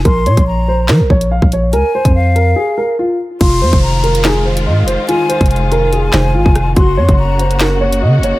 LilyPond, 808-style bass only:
\new Staff \with { instrumentName = "808-style bass" } { \clef bass \time 4/4 \key f \phrygian \tempo 4 = 143 bes,,8 bes,16 bes,,4~ bes,,16 f16 bes,,16 bes,,8. bes,,8. | des,16 r8 f,4~ f,16 r2 | f,,8 f,16 f,,2~ f,,16 aes,16. f,,16. r16 | r8. f,,4.~ f,,16 f,,8 aes,,16 f,,8. |
ges,,8 ges,16 ges,,2~ ges,,16 des16. ges,,16. r16 | }